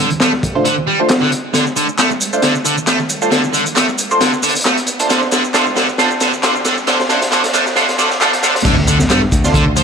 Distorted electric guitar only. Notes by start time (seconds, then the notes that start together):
0.21 A3
0.65 D3
0.88 G3
1.22 D3
1.54 D3
1.76 D3
1.99 A3
2.43 D3
2.65 D3
2.88 A3
3.32 D3
3.54 D3
3.76 A3
4.21 D3
4.43 D3
4.65 A3
5.10 D3
5.32 D3
5.54 D3
5.76 D3
5.99 D3
6.21 D3
6.43 D3
6.65 D3
6.88 D3
7.10 D3
7.32 D3
7.54 D3
7.76 D3
7.99 D3
8.21 D3
8.43 D3
8.66 D3
8.88 D3
9.10 A3
9.54 D3
9.77 F3